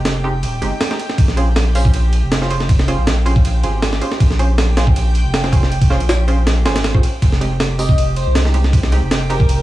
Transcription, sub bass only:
0.05 0.42 F1 medium
0.43 0.60 D#1 medium
0.62 0.71 G1 medium
1.18 2.21 A#1 loud
2.23 2.97 F1 medium
2.98 3.06 A#1 medium
3.07 3.62 A#1 medium
3.64 4.00 G#1 loud
4.21 5.23 A#1 loud
5.25 5.99 F1 medium
6.00 6.08 A#1 medium
6.09 6.64 A#1 medium
6.66 7.02 G#1 loud
7.22 8.25 F1 medium
8.27 9.01 C2 loud
9.02 9.10 F1 medium
9.11 9.62 F1 loud

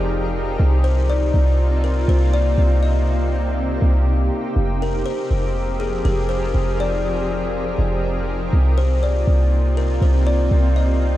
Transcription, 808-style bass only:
0.00 0.57 F1 loud
0.60 1.31 C2 loud
1.34 2.05 C2 loud
2.08 2.56 C2 loud
2.58 3.78 C2 loud
3.82 4.29 C2 loud
4.56 5.04 F1 loud
5.31 6.02 F1 loud
6.05 6.53 F1 loud
6.54 7.74 F1 loud
7.78 8.50 F1 loud
8.53 9.24 C2 loud
9.27 9.99 C2 loud
10.02 10.49 C2 loud
10.51 11.17 C2 loud

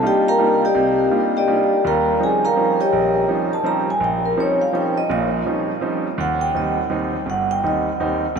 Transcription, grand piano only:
0.02 0.28 G3 medium
0.02 0.28 A#3 soft
0.02 0.28 D4 soft
0.02 0.28 D#4 medium
0.02 0.28 F4 medium
0.38 0.64 G3 medium
0.38 0.64 A#3 medium
0.38 0.64 D4 medium
0.38 0.64 D#4 medium
0.38 0.64 F4 medium
0.75 1.06 C2 medium
0.75 1.06 C3 medium
1.11 1.36 G3 soft
1.11 1.36 A#3 soft
1.11 1.36 D4 soft
1.11 1.36 D#4 soft
1.11 1.36 F4 medium
1.47 1.72 G3 medium
1.47 1.72 A#3 medium
1.47 1.72 D4 medium
1.47 1.73 D#4 medium
1.47 1.73 F4 medium
1.84 2.15 D#2 medium
1.84 2.15 G3 medium
2.20 2.45 F3 medium
2.20 2.44 G3 soft
2.20 2.45 C4 soft
2.20 2.45 C#4 soft
2.20 2.45 D#4 medium
2.56 2.81 F3 medium
2.56 2.81 G3 soft
2.56 2.81 C4 soft
2.56 2.81 C#4 medium
2.56 2.81 D#4 medium
2.93 3.24 A#1 medium
3.28 3.53 F3 medium
3.28 3.53 G3 soft
3.28 3.53 C4 soft
3.28 3.53 C#4 soft
3.28 3.54 D#4 medium
3.63 3.89 F3 medium
3.63 3.89 G3 medium
3.63 3.89 C4 medium
3.63 3.89 C#4 soft
3.63 3.89 D#4 medium
4.00 4.32 A#1 medium
4.36 4.61 F3 medium
4.36 4.62 G3 medium
4.36 4.62 C4 medium
4.36 4.62 C#4 soft
4.36 4.62 D#4 medium
4.72 4.98 F3 medium
4.72 4.98 G3 soft
4.72 4.98 C4 soft
4.72 4.98 C#4 medium
4.72 4.98 D#4 medium
5.09 5.41 A#1 medium
5.09 5.41 A#2 medium
5.46 5.70 F3 medium
5.46 5.70 G3 soft
5.46 5.71 C4 soft
5.46 5.70 C#4 soft
5.46 5.71 D#4 medium
5.81 6.06 F3 medium
5.81 6.06 G3 soft
5.81 6.06 C4 soft
5.81 6.06 C#4 soft
5.81 6.07 D#4 medium
6.18 6.49 D#2 medium
6.54 6.79 D#2 medium
6.54 6.79 G3 soft
6.54 6.79 C4 soft
6.54 6.79 D#4 medium
6.90 7.15 D#2 medium
6.90 7.15 G3 soft
6.90 7.15 C4 medium
6.90 7.15 D#4 medium
7.26 7.57 G1 medium
7.63 7.88 D#2 medium
7.63 7.88 G3 medium
7.63 7.88 C4 soft
7.63 7.88 D#4 medium
8.00 8.24 D#2 medium
8.00 8.24 G3 medium
8.00 8.24 C4 soft
8.00 8.24 D#4 medium
8.36 8.39 G1 medium

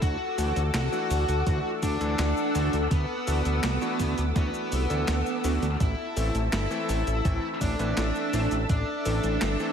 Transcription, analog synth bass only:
0.02 0.17 D2 loud
0.38 0.53 D2 medium
0.56 0.71 D2 medium
0.74 0.89 C2 loud
1.10 1.25 D2 medium
1.29 1.43 D2 medium
1.47 1.61 D2 loud
1.83 1.97 D2 loud
2.01 2.15 D2 medium
2.19 2.33 D2 loud
2.55 2.70 D2 medium
2.73 2.88 D2 medium
2.91 3.06 D2 loud
3.28 3.42 D2 loud
3.46 3.60 D2 medium
3.64 3.78 C2 loud
4.00 4.14 D2 medium
4.18 4.32 D2 medium
4.36 4.50 D2 loud
4.72 4.87 C2 medium
4.90 5.05 D2 medium
5.08 5.23 D2 loud
5.44 5.59 D2 medium
5.62 5.77 D2 medium
5.81 5.95 A1 loud
6.17 6.31 A1 medium
6.35 6.49 A1 medium
6.53 6.67 G1 loud
6.89 7.03 A1 medium
7.07 7.21 A1 medium
7.25 7.40 A1 loud
7.61 7.76 A1 medium
7.79 7.94 A1 medium
7.97 8.12 A1 loud
8.33 8.48 A1 medium
8.51 8.66 A1 medium
8.70 8.84 A1 loud
9.06 9.20 A1 loud
9.24 9.38 A1 medium
9.42 9.56 G1 loud

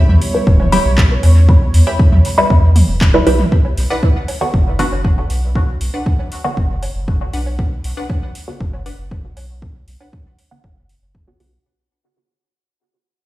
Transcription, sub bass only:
0.09 0.18 E2 loud
0.47 0.79 E1 medium
0.85 1.17 B1 loud
1.23 1.55 E2 medium
1.74 1.83 E2 loud
2.12 2.21 E2 loud
2.50 2.82 E2 loud
2.88 3.21 E1 medium
3.27 3.45 B1 loud
3.78 3.87 B1 medium
4.16 4.25 B1 medium
4.54 4.86 F#1 medium
4.92 5.24 F#1 medium
5.30 5.62 B1 medium
5.81 5.90 B1 medium
6.19 6.28 B1 medium
6.57 6.89 F#1 medium
6.95 7.27 F#1 medium
7.33 7.66 B1 medium
7.84 7.93 B1 medium
8.22 8.31 B1 medium
8.60 8.93 F#1 medium
8.99 9.31 F#1 medium
9.37 9.69 B1 medium
9.88 9.97 B1 medium
10.26 10.35 B1 medium
10.64 10.96 F#1 medium
11.02 11.34 F#1 medium
11.40 11.58 B1 medium

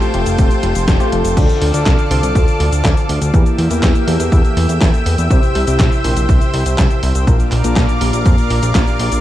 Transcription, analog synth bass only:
0.14 0.25 F1 loud
0.27 0.37 F1 medium
0.38 0.49 F1 loud
0.63 0.74 F1 loud
0.76 0.86 F1 medium
0.88 0.98 F1 medium
1.13 1.23 F1 medium
1.25 1.35 F1 medium
1.37 1.47 D2 loud
1.62 1.72 D2 loud
1.74 1.84 D2 medium
1.86 1.97 C2 loud
2.11 2.21 C2 loud
2.23 2.34 C2 medium
2.35 2.46 D2 loud
2.60 2.70 D2 loud
2.72 2.83 D2 medium
2.85 2.95 D2 loud
3.09 3.20 D2 medium
3.21 3.32 D2 medium
3.34 3.44 E2 loud
3.58 3.69 E2 medium
3.71 3.81 E2 medium
3.83 3.93 E2 loud
4.08 4.18 E2 loud
4.20 4.30 E2 medium
4.32 4.43 E2 loud
4.57 4.67 E2 loud
4.69 4.79 E2 medium
4.81 4.92 E2 medium
5.06 5.16 E2 medium
5.18 5.29 E2 medium
5.30 5.41 C2 loud
5.55 5.66 C2 loud
5.68 5.78 C2 medium
5.80 5.90 A#1 loud
6.04 6.15 A#1 loud
6.17 6.27 A#1 medium
6.29 6.39 C2 loud
6.54 6.64 C2 loud
6.66 6.76 C2 medium
6.78 6.88 C2 loud
7.03 7.13 C2 loud
7.15 7.25 C2 medium
7.27 7.38 A#1 loud
7.52 7.62 A#1 loud
7.64 7.75 A#1 medium
7.76 7.87 A#1 loud
8.01 8.12 A#1 loud
8.13 8.24 A#1 medium
8.26 8.36 F2 loud
8.50 8.61 A#1 loud
8.63 8.73 A#1 medium
8.75 8.85 A#1 loud
8.99 9.10 A#1 medium
9.12 9.21 A#1 medium

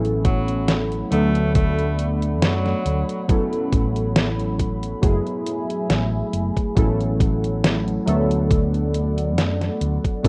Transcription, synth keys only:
0.00 1.03 F#3 medium
0.00 1.03 B3 medium
0.00 1.04 C#4 medium
0.00 1.04 E4 medium
0.00 1.05 A4 medium
1.10 3.20 F#3 medium
1.10 3.21 A3 medium
1.10 3.21 B3 medium
1.10 3.22 D4 medium
1.10 3.22 A4 loud
3.28 4.94 F#3 medium
3.28 4.95 B3 medium
3.28 4.95 C#4 medium
3.28 4.96 E4 medium
3.28 4.96 A4 medium
5.01 6.68 F#3 medium
5.01 6.69 A3 medium
5.01 6.69 B3 medium
5.01 6.69 E4 medium
5.01 6.70 G#4 medium
6.75 7.99 F#3 medium
6.75 7.99 B3 medium
6.75 7.99 C#4 medium
6.75 8.00 E4 medium
6.75 8.00 A4 medium
8.06 10.16 F#3 medium
8.06 10.16 A3 medium
8.06 10.17 B3 medium
8.06 10.17 D4 medium
8.06 10.17 A4 loud
10.23 10.28 F#3 medium
10.23 10.28 B3 medium
10.23 10.28 C#4 medium

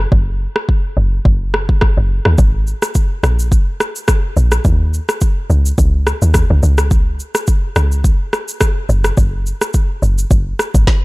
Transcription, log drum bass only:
0.12 0.47 F#1 loud
0.97 1.19 F#1 medium
1.25 1.70 F#1 medium
1.69 1.92 G#1 medium
1.97 2.20 F#1 medium
2.26 2.36 D#2 medium
2.38 2.73 G#1 loud
3.23 3.58 A#1 medium
4.37 4.59 A#1 medium
4.65 5.00 D#2 loud
5.50 5.72 C#2 medium
5.78 6.13 C#2 medium
6.22 6.45 D#2 medium
6.50 6.60 C#2 medium
6.63 7.21 C#2 medium
7.76 8.11 C#2 medium
8.89 9.12 F#1 loud
9.17 9.53 F#1 loud
10.02 10.25 F#1 medium
10.31 10.53 F#1 loud
10.75 10.85 G#1 medium

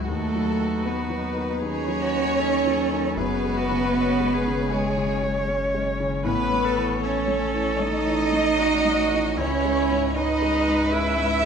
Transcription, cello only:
0.09 0.87 A3 loud
0.85 1.63 B3 medium
1.61 3.19 C#4 loud
3.17 4.71 B3 loud
4.72 5.47 G#3 loud
6.24 7.05 B3 loud
7.04 7.81 C#4 loud
7.80 9.38 D#4 loud
9.37 10.15 C#4 loud
10.16 10.95 D#4 loud
10.93 11.45 E4 loud

